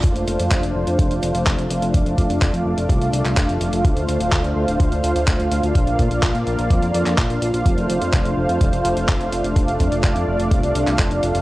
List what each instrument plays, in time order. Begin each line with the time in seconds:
Already playing: analog synth pad D4
0.04 analog synth bass F1, analog synth pad A3 F4 C5 F5, kick, closed hi-hat
0.16 analog synth bass F1, closed hi-hat
0.28 analog synth bass F1, closed hi-hat
0.40 analog synth bass F2, closed hi-hat
0.51 analog synth bass F1, kick, clap, closed hi-hat
0.63 analog synth bass F1, closed hi-hat
0.75 analog synth bass F1
0.87 analog synth bass F2, closed hi-hat
0.99 analog synth bass F1, kick, closed hi-hat
1.11 analog synth bass F1, closed hi-hat
1.23 analog synth bass F1, closed hi-hat
1.35 analog synth bass F1, closed hi-hat
1.46 analog synth bass F1, kick, clap, closed hi-hat
1.58 analog synth bass F1, closed hi-hat
1.70 analog synth bass F1, closed hi-hat
1.82 analog synth bass F1, closed hi-hat
1.94 analog synth bass F1, analog synth pad D5, kick, closed hi-hat
2.06 analog synth bass F1, closed hi-hat
2.18 analog synth bass F2, kick, closed hi-hat
2.30 analog synth bass F1, closed hi-hat
2.42 analog synth bass F1, kick, clap, closed hi-hat
2.54 analog synth bass F2, closed hi-hat
2.65 analog synth bass F1
2.77 analog synth bass F1, closed hi-hat
2.89 analog synth bass C2, kick, closed hi-hat
3.01 analog synth bass C2, closed hi-hat
3.13 analog synth bass C2, closed hi-hat
3.25 analog synth bass C2, clap, closed hi-hat
3.37 analog synth bass F1, kick, clap, closed hi-hat
3.49 analog synth bass F1, closed hi-hat
3.61 analog synth bass F1, closed hi-hat
3.73 analog synth bass F1, closed hi-hat
3.85 analog synth bass D2, analog synth pad C5, kick, closed hi-hat
3.97 analog synth bass D2, closed hi-hat
4.08 analog synth bass D2, closed hi-hat
4.20 analog synth bass D1, closed hi-hat
4.32 analog synth bass D2, kick, clap, closed hi-hat
4.44 analog synth bass D2, closed hi-hat
4.56 analog synth bass D2
4.68 analog synth bass D1, closed hi-hat
4.80 analog synth bass D2, kick, closed hi-hat
4.92 analog synth bass D2, closed hi-hat
5.04 analog synth bass D2, closed hi-hat
5.16 analog synth bass D2, closed hi-hat
5.27 analog synth bass D2, kick, clap, closed hi-hat
5.39 analog synth bass D2, closed hi-hat
5.51 analog synth bass D2, closed hi-hat
5.63 analog synth bass D2, closed hi-hat
5.75 analog synth bass A#1, analog synth pad A#3 D5, kick, closed hi-hat
5.87 analog synth bass A#1, closed hi-hat
5.99 analog synth bass A#2, kick, closed hi-hat
6.11 analog synth bass A#1, closed hi-hat
6.23 analog synth bass A#1, kick, clap, closed hi-hat
6.35 analog synth bass A#2, closed hi-hat
6.47 analog synth bass A#1, closed hi-hat
6.59 analog synth bass A#1, closed hi-hat
6.70 analog synth bass F2, kick, closed hi-hat
6.82 analog synth bass F2, closed hi-hat
6.94 analog synth bass F2, closed hi-hat
7.06 analog synth bass F2, clap, closed hi-hat
7.18 analog synth bass A#1, kick, clap, closed hi-hat
7.30 analog synth bass A#1, closed hi-hat
7.42 analog synth bass A#1, closed hi-hat
7.54 analog synth bass A#1, closed hi-hat
7.66 analog synth bass F1, analog synth pad A3 D4 C5, kick, closed hi-hat
7.78 analog synth bass F1, closed hi-hat
7.90 analog synth bass F1, closed hi-hat
8.02 analog synth bass F2, closed hi-hat
8.13 analog synth bass F1, kick, clap, closed hi-hat
8.25 analog synth bass F1, closed hi-hat
8.37 analog synth bass F1
8.49 analog synth bass F2, closed hi-hat
8.61 analog synth bass F1, kick, closed hi-hat
8.73 analog synth bass F1, closed hi-hat
8.85 analog synth bass F1, closed hi-hat
8.97 analog synth bass F1, closed hi-hat
9.08 analog synth bass F1, kick, clap, closed hi-hat
9.20 analog synth bass F1, closed hi-hat
9.32 analog synth bass F1, closed hi-hat
9.44 analog synth bass F1, closed hi-hat
9.56 analog synth bass F1, analog synth pad D5, kick, closed hi-hat
9.68 analog synth bass F1, closed hi-hat
9.80 analog synth bass F2, kick, closed hi-hat
9.92 analog synth bass F1, closed hi-hat
10.04 analog synth bass F1, kick, clap, closed hi-hat
10.16 analog synth bass F2, closed hi-hat
10.28 analog synth bass F1
10.39 analog synth bass F1, closed hi-hat
10.51 analog synth bass C2, kick, closed hi-hat
10.63 analog synth bass C2, closed hi-hat
10.75 analog synth bass C2, closed hi-hat
10.87 analog synth bass C2, clap, closed hi-hat
10.99 analog synth bass F1, kick, clap, closed hi-hat
11.11 analog synth bass F1, closed hi-hat
11.23 analog synth bass F1, closed hi-hat
11.35 analog synth bass F1, closed hi-hat